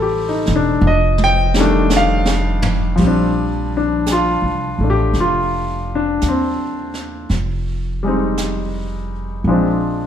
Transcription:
Already playing: upright bass A1, grand piano D#3 G3 A3 C4 A4
0.02 grand piano G4
0.29 grand piano D#4
0.46 upright bass E1, snare
0.56 grand piano D4
0.81 upright bass F1
0.87 grand piano D#5
1.18 mid tom
1.24 grand piano G5
1.54 grand piano D#3 G3, snare
1.58 grand piano A3 D4
1.90 snare, hi-hat pedal
1.97 grand piano F5
2.25 snare
2.62 floor tom
2.96 upright bass A#1, grand piano F3 G3, brush sweep, kick, snare, ride
3.03 grand piano C4 D4
3.77 grand piano D4
4.06 brush sweep, snare, hi-hat pedal
4.12 grand piano F4
4.42 upright bass C2
4.79 upright bass A1, grand piano A3
4.84 grand piano D4
4.90 grand piano G4
5.13 upright bass F1, brush sweep, snare
5.20 grand piano F4
5.95 grand piano D4
6.21 upright bass D#2, brush sweep, snare, hi-hat pedal
6.28 grand piano C4
6.94 snare
7.29 upright bass F1, brush sweep, snare
8.03 grand piano G3 G#3 C4
8.07 grand piano D#4
8.37 brush sweep, snare, hi-hat pedal
9.44 upright bass A#1, grand piano F3 G#3, brush sweep
9.48 grand piano C4 D4

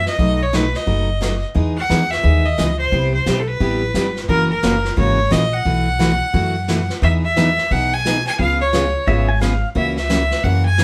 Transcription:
0.06 fiddle D#5, snare
0.19 upright bass B1, steel-string acoustic guitar B2 F#3 A3 D#4 F#4, brush sweep, kick
0.42 fiddle C#5
0.53 steel-string acoustic guitar B2 F#3 A3 D#4 F#4, fiddle B4, snare, hi-hat pedal
0.74 fiddle D#5, snare
0.86 upright bass F#1, steel-string acoustic guitar B2 F#3 A3 D#4 F#4, brush sweep, kick
1.21 steel-string acoustic guitar B2 F#3 A3 D#4 F#4, snare, hi-hat pedal
1.54 upright bass E2, steel-string acoustic guitar E3 G#3 B3 D#4 G#4, brush sweep, kick
1.78 fiddle F#5
1.90 upright bass E2, steel-string acoustic guitar E3 G#3 B3 D#4 G#4, snare, hi-hat pedal
2.11 fiddle E5, snare
2.23 upright bass D#2, steel-string acoustic guitar E3 G#3 B3 D#4 G#4, brush sweep, kick
2.46 fiddle D#5
2.58 upright bass C#2, steel-string acoustic guitar E3 G#3 B3 D#4 G#4, snare, hi-hat pedal
2.79 fiddle C5
2.92 upright bass C2, steel-string acoustic guitar C3 G3 B3 E4 G4, brush sweep, kick
3.14 fiddle C5
3.26 upright bass B1, steel-string acoustic guitar C3 G3 B3 E4 G4, snare, hi-hat pedal
3.39 fiddle A4
3.47 fiddle B4
3.60 upright bass A1, steel-string acoustic guitar C3 G3 B3 E4 G4, brush sweep, kick
3.94 upright bass G1, steel-string acoustic guitar C3 G3 B3 E4 G4, snare, hi-hat pedal
4.16 snare
4.28 upright bass F#1, steel-string acoustic guitar C#3 E3 A#3 C#4 F#4, fiddle A#4, brush sweep, kick
4.50 fiddle A#4
4.63 upright bass F#1, steel-string acoustic guitar C#3 E3 A#3 C#4 F#4, snare, hi-hat pedal
4.85 snare
4.96 upright bass G#1, steel-string acoustic guitar C#3 E3 A#3 C#4 F#4, fiddle C#5, brush sweep, kick
5.30 upright bass A#1, steel-string acoustic guitar C#3 E3 A#3 C#4 F#4, fiddle D#5, snare, hi-hat pedal
5.53 fiddle F#5
5.65 upright bass B1, steel-string acoustic guitar B2 E3 A3 E4 F#4, brush sweep, kick
5.99 steel-string acoustic guitar B2 E3 A3 E4 F#4, snare, hi-hat pedal
6.33 upright bass F#2, steel-string acoustic guitar B2 E3 A3 E4 F#4, brush sweep, kick
6.68 steel-string acoustic guitar B2 E3 A3 E4 F#4, snare, hi-hat pedal
6.90 snare
7.02 upright bass E2, steel-string acoustic guitar E3 B3 D#4 G#4, fiddle E5, brush sweep, kick
7.25 fiddle E5
7.36 steel-string acoustic guitar E3 B3 D#4 G#4, snare, hi-hat pedal
7.58 snare
7.71 upright bass B1, steel-string acoustic guitar E3 B3 D#4 G#4, fiddle F#5, brush sweep, kick
7.93 fiddle G#5
8.05 steel-string acoustic guitar E3 B3 D#4 G#4, snare, hi-hat pedal
8.26 fiddle G#5, snare
8.39 upright bass C#2, steel-string acoustic guitar C#3 G#3 B3 F4 G#4, fiddle F5, brush sweep, kick
8.61 fiddle C#5
8.73 steel-string acoustic guitar C#3 G#3 B3 F4 G#4, snare, hi-hat pedal
9.07 upright bass G#1, steel-string acoustic guitar C#3 G#3 B3 F4 G#4, pedal steel guitar E5, brush sweep, kick
9.29 pedal steel guitar G#5
9.40 steel-string acoustic guitar C#3 G#3 B3 F4 G#4, pedal steel guitar F5, snare, hi-hat pedal
9.75 upright bass C#2, steel-string acoustic guitar C#3 E3 A#3 C#4 F#4, fiddle E5, brush sweep, kick
9.97 fiddle E5, snare
10.10 steel-string acoustic guitar C#3 E3 A#3 C#4 F#4, snare, hi-hat pedal
10.31 snare
10.43 upright bass F#2, steel-string acoustic guitar C#3 E3 A#3 C#4 F#4, fiddle F#5, brush sweep, kick
10.66 fiddle G#5
10.78 steel-string acoustic guitar C#3 E3 A#3 C#4 F#4, snare, hi-hat pedal

